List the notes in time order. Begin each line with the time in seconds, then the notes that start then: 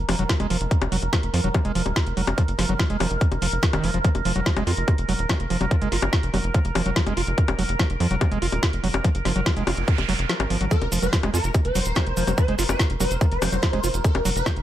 Already playing: A#4
0.09 F1 F3, open hi-hat, high bongo
0.19 F1 F#3, closed hi-hat
0.29 F3, kick, snare, closed hi-hat
0.40 F1 G#3, closed hi-hat, high bongo
0.50 F1 F3, open hi-hat
0.61 F1, closed hi-hat
0.71 kick, closed hi-hat
0.82 F1, closed hi-hat, high bongo
0.92 F1 F#3, open hi-hat
1.02 F1, closed hi-hat
1.13 F3, kick, snare, closed hi-hat, high bongo
1.23 F1, closed hi-hat
1.34 F2 F3, open hi-hat
1.44 F1 F#3, closed hi-hat
1.54 F3, kick, closed hi-hat, high bongo
1.65 F1 G#3, closed hi-hat
1.75 F1 F3, open hi-hat
1.86 D#1, closed hi-hat, high bongo
1.96 kick, snare, closed hi-hat
2.07 F1, closed hi-hat
2.17 F1 F#3, open hi-hat
2.27 F1, closed hi-hat, high bongo
2.38 F3, kick, closed hi-hat
2.48 F#1, closed hi-hat
2.59 F#1 F3, snare, open hi-hat, high bongo
2.69 F#1 F#3, closed hi-hat
2.79 F3, kick, snare, closed hi-hat
2.90 F1 G#3, closed hi-hat
3.00 F1 F3, open hi-hat, high bongo
3.11 F1, closed hi-hat
3.21 kick, closed hi-hat
3.32 F1, closed hi-hat, high bongo
3.42 F1 F3, open hi-hat
3.52 F1, closed hi-hat
3.63 F3, kick, snare, closed hi-hat
3.73 F1 D#3, closed hi-hat, high bongo
3.84 F1 F3, open hi-hat
3.94 F1 F3, closed hi-hat
4.04 F3, kick, closed hi-hat
4.15 F1, closed hi-hat, high bongo
4.25 F1 F3, open hi-hat
4.36 F1 F#3, closed hi-hat
4.46 F3, kick, snare, closed hi-hat
4.57 F1 G#3, closed hi-hat, high bongo
4.67 F2 F4, open hi-hat
4.77 F1, closed hi-hat
4.88 kick, closed hi-hat, high bongo
4.98 F1, closed hi-hat
5.09 F1 F#3, open hi-hat
5.19 D#1, closed hi-hat
5.29 F3, kick, snare, closed hi-hat, high bongo
5.40 F1, closed hi-hat
5.50 F1 F3, open hi-hat
5.61 F1 F#3, closed hi-hat, high bongo
5.71 F3, kick, closed hi-hat
5.82 F#1 G#3, closed hi-hat
5.92 F#1 F4, snare, open hi-hat
6.02 F#1, closed hi-hat, high bongo
6.13 kick, snare, closed hi-hat
6.23 F1, closed hi-hat
6.34 F1 F#3, open hi-hat, high bongo
6.44 F1, closed hi-hat
6.54 F3, kick, closed hi-hat
6.65 F1, closed hi-hat
6.75 F1 F3, open hi-hat, high bongo
6.86 F1 F#3, closed hi-hat
6.96 F3, kick, snare, closed hi-hat
7.07 F1 G#3, closed hi-hat, high bongo
7.17 F1 F4, open hi-hat
7.27 F1, closed hi-hat
7.38 kick, closed hi-hat
7.48 F1, closed hi-hat, high bongo
7.59 F1 F#3, open hi-hat
7.69 F1, closed hi-hat
7.79 F3, kick, snare, closed hi-hat, high bongo
7.90 F1, closed hi-hat
8.00 F2 F3, open hi-hat
8.11 F1 F#3, closed hi-hat
8.21 F3, kick, closed hi-hat, high bongo
8.32 F1 G#3, closed hi-hat
8.42 F1 F4, open hi-hat
8.52 D#1, closed hi-hat, high bongo
8.63 kick, snare, closed hi-hat
8.73 F1, closed hi-hat
8.84 F1 F#3, open hi-hat
8.94 F1, closed hi-hat, high bongo
9.04 F3, kick, closed hi-hat, noise sweep
9.15 F#1, closed hi-hat
9.25 F#1 F3, snare, open hi-hat, high bongo
9.36 F#1 F#3, closed hi-hat
9.46 F3, kick, snare, closed hi-hat
9.57 F1 G#3, closed hi-hat
9.67 F1 F4, open hi-hat, high bongo
9.77 F1, closed hi-hat
9.88 kick, closed hi-hat
9.98 F1, closed hi-hat, high bongo
10.09 F1 F#3, open hi-hat
10.19 F1, closed hi-hat
10.29 F3, snare, closed hi-hat
10.40 G#1, closed hi-hat, high bongo
10.50 G#1 F3, open hi-hat
10.61 G#1 F#3, closed hi-hat
10.71 F3 A#4, kick, closed hi-hat, maracas
10.82 F1, closed hi-hat, high bongo
10.92 F1 F3, open hi-hat, maracas
11.02 F1 F#3 C5, closed hi-hat, maracas
11.13 F3, kick, snare, closed hi-hat, maracas
11.23 F1 G#3, closed hi-hat, high bongo
11.34 F2 F4 A#4, open hi-hat, maracas
11.44 F1, closed hi-hat, maracas
11.54 kick, closed hi-hat, high bongo, maracas
11.65 F1 C5, closed hi-hat
11.75 F1 F#3, open hi-hat, maracas
11.85 D#1, closed hi-hat, maracas
11.96 F3, kick, snare, closed hi-hat, high bongo, maracas
12.07 F1, closed hi-hat
12.17 F1 F3, open hi-hat, maracas
12.27 F1 F#3, closed hi-hat, high bongo, maracas
12.38 F3 C5, kick, closed hi-hat, maracas
12.48 F#1 G#3, closed hi-hat
12.59 F#1 F4, snare, open hi-hat, maracas
12.69 F#1 C5, closed hi-hat, high bongo, maracas
12.79 kick, snare, closed hi-hat, maracas
12.90 F1, closed hi-hat
13.00 F1 F#3 C5, open hi-hat, high bongo, maracas
13.11 F1, closed hi-hat, maracas
13.21 F3, kick, closed hi-hat, maracas
13.32 F1 C5, closed hi-hat
13.42 F1 F3, open hi-hat, high bongo, maracas
13.52 F1 F#3, closed hi-hat, maracas
13.63 F3, kick, snare, closed hi-hat, maracas
13.73 F1 G#3, closed hi-hat, high bongo
13.84 F1 F4, open hi-hat, maracas
13.94 F1, closed hi-hat, maracas
14.04 A#4, kick, closed hi-hat, maracas
14.15 F1, closed hi-hat, high bongo
14.25 F1 F#3, open hi-hat, maracas
14.36 F1 C5, closed hi-hat, maracas
14.46 F3, kick, snare, closed hi-hat, high bongo, maracas
14.57 F1, closed hi-hat